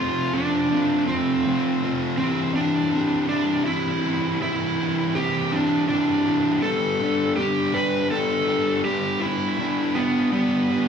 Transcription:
Already playing: distorted electric guitar F3 A3, electric slide guitar F4
0.00 distorted electric guitar C4 F4
0.33 distorted electric guitar A3 C4 F4, electric slide guitar D4
0.70 distorted electric guitar F3 A3 C4 F4
1.07 electric slide guitar C4, distorted electric guitar C4 F4
1.12 distorted electric guitar A3
1.45 distorted electric guitar F3 A3 C4 F4
1.82 distorted electric guitar A3 C4 F4
2.18 distorted electric guitar E3 C4 E4, electric slide guitar C4
2.22 distorted electric guitar G4
2.56 distorted electric guitar C4 E4 G4, electric slide guitar D4
2.93 distorted electric guitar E3 C4 E4 G4
3.29 electric slide guitar D4, distorted electric guitar E4 G4
3.33 distorted electric guitar C4
3.66 distorted electric guitar E3 C4 E4 G4, electric slide guitar E4
4.03 distorted electric guitar C4 E4 G4
4.40 distorted electric guitar E3 C4 E4 G4, electric slide guitar E4
4.78 distorted electric guitar C4 E4 G4
5.14 distorted electric guitar E3 C4 E4 G4, electric slide guitar G4
5.51 distorted electric guitar C4 E4 G4, electric slide guitar D4
5.89 distorted electric guitar E3 C4 E4, electric slide guitar D4
5.93 distorted electric guitar G4
6.26 distorted electric guitar C4 E4 G4
6.63 distorted electric guitar G3 B3 D4, electric slide guitar A4
6.67 distorted electric guitar G4
7.00 distorted electric guitar B3 D4 G4
7.37 distorted electric guitar G3 B3 D4 G4, electric slide guitar G4
7.74 distorted electric guitar B3 D4 G4, electric slide guitar B4
8.11 distorted electric guitar G3 B3 D4 G4, electric slide guitar A4
8.48 distorted electric guitar B3 D4 G4
8.84 distorted electric guitar G3 B3 D4 G4, electric slide guitar G4
9.20 distorted electric guitar D4 G4, electric slide guitar E4
9.25 distorted electric guitar B3
9.58 distorted electric guitar G3 B3 D4 G4
9.95 electric slide guitar B3, distorted electric guitar B3 D4 G4
10.33 distorted electric guitar G3 B3 D4 G4, electric slide guitar B3
10.71 distorted electric guitar B3 D4 G4

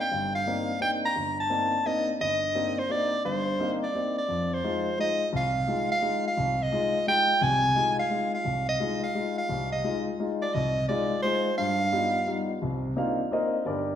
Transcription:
0.01 soprano saxophone G5
0.11 grand piano G1 G2
0.35 soprano saxophone F5
0.47 grand piano A#3 C4 D4 D#4
0.80 grand piano A#3 C4 D4 D#4, soprano saxophone G5
1.06 soprano saxophone A#5
1.16 grand piano G1
1.40 soprano saxophone A5
1.50 grand piano A#3 C4 D4 D#4
1.86 grand piano A#3 C4 D4 D#4, soprano saxophone D#5
2.20 grand piano G1, soprano saxophone D#5
2.55 grand piano A#3 C4 D4 D#4
2.79 soprano saxophone C5
2.89 grand piano A#3 C4 D4 D#4, soprano saxophone D5
3.25 grand piano G1 G2, soprano saxophone C5
3.60 grand piano A#3 C4 D4 D#4
3.83 soprano saxophone D5
3.94 grand piano A#3 C4 D4 D#4
4.18 soprano saxophone D5
4.28 grand piano F2
4.54 soprano saxophone C5
4.64 grand piano G#3 D#4 F4
4.98 grand piano G#3 D#4 F4, soprano saxophone D#5
5.33 grand piano C2, soprano saxophone F5
5.67 grand piano G#3 D#4 F4
5.92 soprano saxophone F5
6.02 grand piano G#3 D#4 F4
6.27 soprano saxophone F5
6.37 grand piano C2
6.62 soprano saxophone D#5
6.72 grand piano G#3 D#4 F4
7.07 grand piano G#3 D#4 F4, soprano saxophone G5
7.41 grand piano C2 C3, soprano saxophone G#5
7.75 grand piano G#3 D#4 F4
7.99 soprano saxophone F5
8.10 grand piano G#3 D#4 F4
8.35 soprano saxophone F5
8.45 grand piano C2
8.69 soprano saxophone D#5
8.80 grand piano G#3 D#4 F4
9.03 soprano saxophone F5
9.15 grand piano G#3 D#4 F4
9.38 soprano saxophone F5
9.49 grand piano C2 C3
9.72 soprano saxophone D#5
9.83 grand piano G#3 D#4 F4
10.19 grand piano G#3 D#4 F4
10.42 soprano saxophone D5
10.54 grand piano C2, soprano saxophone D#5
10.89 grand piano G#3 D#4 F4, soprano saxophone D5
11.22 grand piano G#3 D#4 F4, soprano saxophone C5
11.58 grand piano G2, soprano saxophone F5
11.92 grand piano G3 B3 D#4 F4
12.27 grand piano G3 B3 D#4 F4
12.62 grand piano C2 C3
12.96 grand piano A#3 C4 D4 D#4 F4 F5
13.31 grand piano A#3 C4 D4 D#4 A#4 C5 D#5
13.66 grand piano G1 D4 G4 A#4 D5

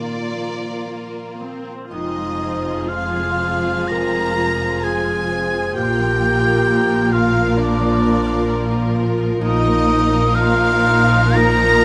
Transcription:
Already playing: harp A#2, viola section A#3, cello section F4, violin section F4 A#4 D5
0.33 harp F3
0.87 harp A#3, viola section A#3
1.40 harp F3, viola section C4
1.91 double bass section F1, cello section F2, harp F2, viola section F3 F4, french horn section G#3 F4, clarinet D#4, violin section G#4 D#5, flute D#6
2.16 harp G#3
2.40 harp C5
2.64 harp F5
2.88 clarinet F4, violin section F5, harp C6, flute F6
3.14 harp G#4
3.39 harp C5
3.65 harp F4
3.88 harp C3, clarinet A#4, violin section A#5, flute A#6
4.14 harp G#3
4.39 harp C5
4.62 harp F5
4.84 clarinet G#4, violin section G#5, harp C6, flute G#6
5.09 harp G#4
5.31 harp C5
5.54 harp F4
5.75 double bass section A#1, harp A#2, cello section A#2, viola section F3 F4, french horn section A#3 F4, clarinet G4, violin section A#4 G5, flute G6
5.99 harp F3
6.22 harp A#4
6.44 harp F5
6.67 harp A#5
6.90 harp F4
7.12 clarinet F4, harp A#4, violin section F5, flute F6
7.35 harp F4
7.57 harp A#3, clarinet D4, violin section D5, flute D6
7.80 harp F3
8.03 harp A#4
8.26 harp F5
8.50 harp A#5
8.71 harp F4
8.95 harp A#4
9.18 harp F4
9.41 double bass section A#1, harp A#2, cello section A#2, viola section F3 D#4, french horn section A#3 F4, clarinet D#4, violin section A#4 D#5, flute D#6
9.65 harp F3
9.88 harp A#4
10.11 harp D#5
10.35 clarinet F4, violin section F5, harp A#5, flute F6
10.60 harp F4
10.86 harp A#4
11.11 harp D#4
11.35 harp A#3, clarinet A#4, violin section A#5, flute A#6
11.61 harp F3

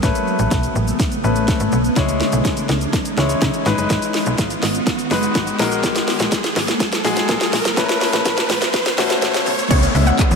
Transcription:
Already playing: riser
0.03 fm bass A1, ambient pad C#3 A3 B3, grand piano A3 C#4 B4, kick, snare, closed hi-hat, shaker
0.15 closed hi-hat, shaker
0.27 shaker
0.39 fm bass A1, closed hi-hat, shaker
0.51 fm bass B1, kick, snare, closed hi-hat, shaker
0.63 closed hi-hat, shaker
0.75 fm bass A1, shaker
0.88 closed hi-hat, shaker
1.00 kick, snare, closed hi-hat, shaker
1.12 closed hi-hat, shaker
1.24 fm bass A1, grand piano A3 C#4 B4, shaker
1.36 closed hi-hat, shaker
1.48 kick, snare, closed hi-hat, shaker
1.60 fm bass G#1, closed hi-hat, shaker
1.72 fm bass B1, shaker
1.85 closed hi-hat, shaker
1.96 fm bass C#2, ambient pad E3 G#3 C#4, grand piano G#3 E4 C#5, kick, snare, closed hi-hat, shaker
2.09 closed hi-hat, shaker
2.21 snare, shaker
2.32 fm bass B1, closed hi-hat, shaker
2.45 kick, snare, closed hi-hat, shaker
2.57 closed hi-hat, shaker
2.69 fm bass C#2, snare, shaker
2.81 closed hi-hat, shaker
2.93 kick, snare, closed hi-hat, shaker
3.05 closed hi-hat, shaker
3.17 fm bass C#2, grand piano G#3 E4 C#5, snare, shaker
3.29 closed hi-hat, shaker
3.42 fm bass C#3, kick, snare, closed hi-hat, shaker
3.54 closed hi-hat, shaker
3.66 fm bass G#1, ambient pad D#3 G#3 B3, grand piano G#3 D#4 B4, snare, shaker
3.78 fm bass F#1, closed hi-hat, shaker
3.90 fm bass G#1, kick, snare, closed hi-hat, shaker
4.02 closed hi-hat, shaker
4.14 snare, open hi-hat, shaker
4.26 fm bass B1, closed hi-hat, shaker
4.38 fm bass G#1, kick, snare, closed hi-hat, shaker
4.50 closed hi-hat, shaker
4.63 fm bass G#1, snare, open hi-hat, shaker
4.75 closed hi-hat, shaker
4.87 kick, snare, closed hi-hat, shaker
4.99 closed hi-hat, shaker
5.11 fm bass F#1, grand piano G#3 D#4 B4, snare, open hi-hat, shaker
5.23 closed hi-hat, shaker
5.35 fm bass G#1, kick, snare, closed hi-hat, shaker
5.47 closed hi-hat, shaker
5.59 fm bass A#1, ambient pad F#3 A#3, grand piano G#3 F#4 A#4, snare, open hi-hat, shaker
5.72 closed hi-hat, shaker
5.83 kick, snare, closed hi-hat, shaker
5.96 snare, closed hi-hat, shaker
6.08 snare, open hi-hat, shaker
6.20 fm bass A#1, snare, closed hi-hat, shaker
6.32 kick, snare, closed hi-hat, shaker
6.44 snare, closed hi-hat, shaker
6.56 fm bass G#1, snare, open hi-hat, shaker
6.68 snare, closed hi-hat, shaker
6.80 kick, snare, closed hi-hat, shaker
6.92 snare, closed hi-hat, shaker
7.04 fm bass A#1, grand piano G#3 F#4 G#4, snare, open hi-hat, shaker
7.17 snare, closed hi-hat, shaker
7.29 fm bass A#2, kick, snare, closed hi-hat, shaker
7.41 snare, closed hi-hat, shaker
7.53 fm bass A#1, snare, open hi-hat, shaker
7.65 fm bass F#1, snare, closed hi-hat, shaker
7.77 fm bass A1, ambient pad C#3 A3 B3, grand piano A3 C#4 B4, kick, snare, closed hi-hat, shaker
7.89 snare, closed hi-hat, shaker
8.01 snare, open hi-hat, shaker
8.13 fm bass A1, snare, closed hi-hat, shaker
8.25 fm bass B1, kick, snare, closed hi-hat, shaker
8.38 snare, closed hi-hat, shaker
8.49 fm bass A1, snare, open hi-hat, shaker
8.62 snare, closed hi-hat, shaker
8.74 kick, snare, closed hi-hat, shaker
8.86 snare, closed hi-hat, shaker
8.98 fm bass A1, grand piano A3 C#4 F#4, snare, open hi-hat, shaker
9.10 snare, closed hi-hat, shaker
9.22 fm bass G#1, snare, closed hi-hat, shaker
9.34 snare, closed hi-hat, shaker
9.46 fm bass B1, open hi-hat, shaker
9.59 closed hi-hat, shaker
9.70 fm bass C#2, ambient pad E3 G#3 C#4, grand piano G#3 C#4 E4 C#5, synth pluck C#5, kick, closed hi-hat, crash, downlifter, shaker
9.83 closed hi-hat, shaker
9.95 fm bass C#2, grand piano G#3 C#4 E4 E5, open hi-hat, shaker
10.07 synth pluck F#5, closed hi-hat, shaker
10.19 kick, clap, closed hi-hat, shaker
10.31 fm bass E2, closed hi-hat, shaker

